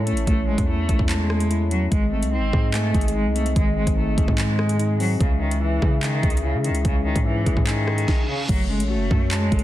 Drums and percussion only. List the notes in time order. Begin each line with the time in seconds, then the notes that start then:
0.07 closed hi-hat
0.17 closed hi-hat
0.27 kick, closed hi-hat
0.58 kick, closed hi-hat
0.89 kick, closed hi-hat
0.99 kick
1.09 clap, closed hi-hat
1.30 cross-stick
1.40 closed hi-hat
1.51 closed hi-hat
1.71 closed hi-hat
1.92 kick, closed hi-hat
2.23 closed hi-hat
2.53 kick
2.74 clap, closed hi-hat
2.94 kick, closed hi-hat
3.01 closed hi-hat
3.08 closed hi-hat
3.36 closed hi-hat
3.46 closed hi-hat
3.56 kick, closed hi-hat
3.87 kick, closed hi-hat
4.18 kick, closed hi-hat
4.28 kick
4.38 clap, closed hi-hat
4.59 cross-stick
4.69 closed hi-hat
4.79 closed hi-hat
5.00 open hi-hat
5.20 kick, closed hi-hat
5.51 closed hi-hat
5.82 kick
6.03 clap, closed hi-hat
6.23 kick, closed hi-hat
6.30 closed hi-hat
6.37 closed hi-hat
6.64 closed hi-hat
6.75 closed hi-hat
6.85 kick, closed hi-hat
7.16 kick, closed hi-hat
7.46 kick, closed hi-hat
7.57 kick
7.67 clap, closed hi-hat
7.88 cross-stick
7.98 closed hi-hat
8.08 kick, snare
8.49 kick, closed hi-hat, crash
8.80 closed hi-hat
9.11 kick
9.31 clap, closed hi-hat
9.52 kick, closed hi-hat
9.59 closed hi-hat